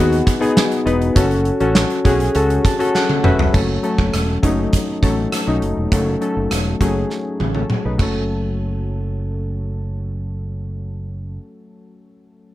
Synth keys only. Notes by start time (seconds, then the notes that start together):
Already playing: B3 D#4 F#4 G#4
0.41 B3 D#4 G#4
0.86 B3 D#4 B4
1.16 C#4 F#4 A4
1.60 C#4 F#4 A4
2.05 C#4 F#4 G#4
2.35 C#4 F#4 A4
2.65 A5
2.79 C#4 F#4 A4
2.95 F#5
3.24 C#4 F#4 B4 E5
3.53 F#3 A3 C#4 A4
3.83 F#3 A3 C#4 A4
4.42 F#3 A3 C#4 D#4
5.02 F#3 A3 C#4 A4
5.47 F#3 A3 C#4 D#4
5.92 F#3 A3 C#4 A4
6.21 F#3 A3 C#4 A4
6.81 F#3 A3 C#4 G#4
7.55 C#4 A4
7.85 D#4 B4
7.98 F#3 A3 C#4
8.03 A4